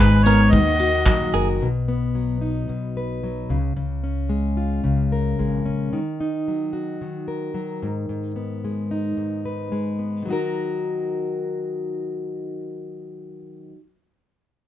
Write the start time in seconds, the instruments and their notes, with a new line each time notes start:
Already playing: upright bass G#1, steel-string acoustic guitar G#2 D#3 D#4, string section D#3 G#3 B3 G#4, harmonica B4
0.00 steel-string acoustic guitar G#3, clean electric guitar B4
0.23 steel-string acoustic guitar B3, clean electric guitar A#4, harmonica C#5, tambourine
0.51 upright bass D#2, steel-string acoustic guitar D#3, string section F#3 A#3 F#4, harmonica D#5, kick
0.79 steel-string acoustic guitar F#4, tambourine
1.06 upright bass A#1, steel-string acoustic guitar F#3, kick, clap
1.33 upright bass F#1, clean electric guitar G#4, steel-string acoustic guitar A#4, tambourine
1.61 upright bass B1, steel-string acoustic guitar B2
1.88 steel-string acoustic guitar B3
2.15 steel-string acoustic guitar F#3
2.41 steel-string acoustic guitar D#4
2.68 upright bass B1, steel-string acoustic guitar B2
2.97 steel-string acoustic guitar B4
3.23 steel-string acoustic guitar F#3
3.49 upright bass C#2, steel-string acoustic guitar C#3
3.76 upright bass C#2, steel-string acoustic guitar C#3
4.04 steel-string acoustic guitar C#4
4.29 steel-string acoustic guitar G#3
4.57 steel-string acoustic guitar F4
4.84 upright bass C#2, steel-string acoustic guitar C#3
5.12 steel-string acoustic guitar A#4
5.39 upright bass A#1, steel-string acoustic guitar G#3
5.66 upright bass A#1, steel-string acoustic guitar C#4
5.93 steel-string acoustic guitar D#3
6.20 steel-string acoustic guitar D#4
6.48 steel-string acoustic guitar F#3
6.73 steel-string acoustic guitar F#4
7.01 steel-string acoustic guitar D#3
7.28 steel-string acoustic guitar A#4
7.54 steel-string acoustic guitar F#3
7.83 steel-string acoustic guitar G#2
8.09 steel-string acoustic guitar G#2
8.36 steel-string acoustic guitar B3
8.64 steel-string acoustic guitar G#3
8.91 steel-string acoustic guitar D#4
9.17 steel-string acoustic guitar G#2
9.45 steel-string acoustic guitar B4
9.72 steel-string acoustic guitar G#3
9.99 steel-string acoustic guitar B3
10.22 steel-string acoustic guitar D#3 F#3
10.29 steel-string acoustic guitar D#4 F#4 A#4